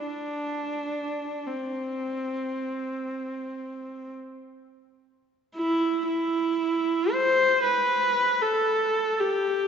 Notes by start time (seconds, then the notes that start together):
0.06 D4
1.47 C4
5.56 E4
6.08 E4
7.13 C5
7.64 B4
8.42 A4
9.20 G4